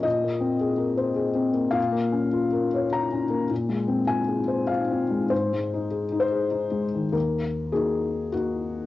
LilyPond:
\new Staff \with { instrumentName = "Felt piano" } { \time 3/4 \key aes \mixolydian \tempo 4 = 103 << { ees''2. | f''2 bes''4 | r4 aes''4 f''4 | c''4. c''4. |
bes'4 aes'4 ges'4 | } \\ { \tuplet 3/2 { bes,8 bes8 c'8 aes'8 bes'8 c''8 aes'8 c'8 bes8 } | \tuplet 3/2 { bes,8 bes8 des'8 f'8 bes'8 des''8 f'8 des'8 bes8 } | \tuplet 3/2 { bes,8 aes8 c'8 f'8 aes'8 c''8 f'8 c'8 aes8 } | \tuplet 3/2 { aes,8 aes8 ees'8 aes'8 ees'8 aes'8 ees'8 aes8 ees8 } |
ees,4 <bes ees' ges'>4 <bes ees'>4 | } >> }